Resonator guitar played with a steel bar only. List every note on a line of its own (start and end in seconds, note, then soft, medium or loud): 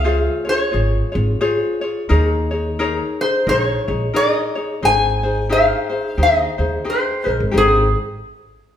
0.00 0.50 F5 medium
0.49 1.12 C#5 medium
3.21 3.48 C5 medium
3.49 4.12 C#5 medium
4.16 4.85 D#5 medium
4.85 5.54 G#5 loud
5.52 6.22 F5 medium
6.23 6.85 D#5 medium
6.90 7.39 C5 medium
7.58 7.95 G#4 medium